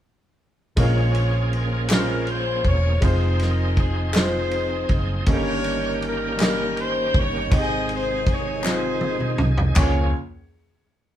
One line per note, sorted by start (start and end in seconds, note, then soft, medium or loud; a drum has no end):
0.76 2.60 A#1 loud
0.76 1.86 A#2 medium
0.76 5.24 F3 medium
0.76 1.47 G#3 medium
0.76 1.47 A#3 medium
0.76 3.00 A#3 medium
0.76 1.48 C#4 medium
0.76 3.01 C#4 medium
0.76 1.85 F4 medium
0.76 1.48 F4 medium
0.76 1.86 G#4 medium
0.76 5.24 G#4 medium
0.76 1.49 A#4 medium
0.76 1.48 C#5 loud
0.76 kick loud
0.76 ride medium
1.15 ride soft
1.53 1.90 A#4 medium
1.53 ride soft
1.88 2.60 G#3 medium
1.88 2.60 A#3 medium
1.88 2.60 C#4 medium
1.88 2.61 F4 medium
1.88 2.25 A#4 medium
1.88 1.97 B4 medium
1.88 snare loud
1.88 clap medium
1.88 ride medium
1.99 2.64 C5 medium
2.27 2.65 C5 medium
2.27 ride soft
2.64 2.99 E1 medium
2.64 3.01 C#5 medium
2.64 kick medium
2.64 ride soft
3.01 4.85 F1 loud
3.01 3.72 G#3 medium
3.01 3.72 C4 medium
3.01 5.25 C4 medium
3.01 3.72 D#4 medium
3.01 5.25 D#4 medium
3.01 4.12 D#4 medium
3.01 3.73 F4 medium
3.01 3.78 G#4 medium
3.01 3.74 C5 medium
3.01 kick loud
3.01 ride medium
3.06 3.41 C5 loud
3.39 3.78 A#4 medium
3.39 snare soft
3.39 ride soft
3.77 4.14 G#4 medium
3.77 kick medium
3.77 ride soft
4.13 4.84 G#3 medium
4.13 4.84 C4 medium
4.13 4.85 D#4 medium
4.13 5.23 D#4 medium
4.13 4.85 F4 medium
4.13 5.23 G#4 medium
4.13 4.86 C5 medium
4.13 snare loud
4.13 clap medium
4.13 ride medium
4.17 5.00 C5 loud
4.51 ride soft
4.89 5.24 F#1 medium
4.89 kick medium
4.89 ride soft
5.26 7.10 G1 loud
5.26 6.36 G2 medium
5.26 9.74 D#3 medium
5.26 5.97 G3 medium
5.26 5.97 A#3 medium
5.26 7.51 A#3 medium
5.26 5.98 C#4 medium
5.26 7.51 C#4 medium
5.26 5.98 D#4 medium
5.26 7.51 G4 medium
5.26 5.35 A4 medium
5.26 6.05 A#4 medium
5.26 kick loud
5.26 ride medium
5.32 6.02 A#4 medium
5.32 6.01 C#5 loud
5.64 ride soft
6.02 ride soft
6.07 6.42 A#4 loud
6.37 7.09 G3 medium
6.37 7.09 A#3 medium
6.37 7.10 C#4 medium
6.37 7.10 D#4 medium
6.37 7.11 D#5 medium
6.37 clap medium
6.37 ride medium
6.41 6.77 A#4 loud
6.41 snare loud
6.77 7.16 C5 loud
6.77 ride soft
7.14 7.49 G1 medium
7.14 7.54 C#5 loud
7.14 kick loud
7.14 ride soft
7.51 9.35 G#1 loud
7.51 8.61 G#2 medium
7.51 9.75 C3 medium
7.51 9.74 G#3 medium
7.51 8.22 C4 medium
7.51 8.22 D#4 medium
7.51 7.59 G4 medium
7.51 9.75 G#4 medium
7.51 kick loud
7.51 ride medium
7.55 8.62 G#4 medium
7.55 7.92 C5 medium
7.55 7.92 D#5 loud
7.60 8.26 G#4 medium
7.89 ride soft
7.93 8.26 C5 loud
8.26 kick medium
8.26 ride soft
8.31 8.67 C#5 loud
8.62 9.34 C4 medium
8.62 9.34 D#4 medium
8.62 9.35 F4 medium
8.62 snare medium
8.62 clap medium
8.66 9.61 D#4 medium
8.66 9.61 G#4 medium
8.66 9.51 C5 loud
9.01 high tom medium
9.20 mid tom medium
9.38 9.74 C2 medium
9.38 mid tom loud
9.58 floor tom loud
9.76 10.12 C#2 loud
9.76 10.12 C#2 medium
9.76 10.12 F3 medium
9.76 10.12 A#3 medium
9.76 10.11 C#4 medium
9.76 10.12 C#4 medium
9.76 10.12 F4 medium
9.76 10.12 G#4 medium
9.76 10.12 C#5 medium
9.76 10.13 C#5 medium
9.76 kick loud
9.76 clap medium
9.76 floor tom loud
9.76 ride bell medium